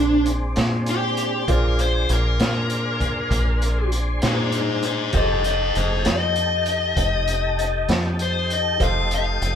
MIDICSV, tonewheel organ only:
0, 0, Header, 1, 2, 480
1, 0, Start_track
1, 0, Tempo, 610376
1, 1166, Time_signature, 12, 3, 24, 8
1, 7512, End_track
2, 0, Start_track
2, 0, Title_t, "Tonewheel organ"
2, 0, Program_c, 0, 16
2, 0, Note_on_c, 0, 56, 61
2, 0, Note_on_c, 0, 60, 63
2, 0, Note_on_c, 0, 62, 61
2, 1134, Note_off_c, 0, 62, 0
2, 1135, Note_off_c, 0, 60, 0
2, 1138, Note_off_c, 0, 56, 0
2, 1155, Note_on_c, 0, 72, 55
2, 1160, Note_on_c, 0, 68, 63
2, 1161, Note_on_c, 0, 62, 63
2, 4012, Note_off_c, 0, 72, 0
2, 4014, Note_off_c, 0, 68, 0
2, 4015, Note_off_c, 0, 62, 0
2, 4044, Note_on_c, 0, 63, 61
2, 4046, Note_on_c, 0, 69, 57
2, 4047, Note_on_c, 0, 67, 63
2, 6899, Note_off_c, 0, 63, 0
2, 6900, Note_off_c, 0, 67, 0
2, 6900, Note_off_c, 0, 69, 0
2, 6939, Note_on_c, 0, 57, 59
2, 6942, Note_on_c, 0, 67, 63
2, 6945, Note_on_c, 0, 63, 57
2, 7512, Note_off_c, 0, 57, 0
2, 7512, Note_off_c, 0, 63, 0
2, 7512, Note_off_c, 0, 67, 0
2, 7512, End_track
0, 0, End_of_file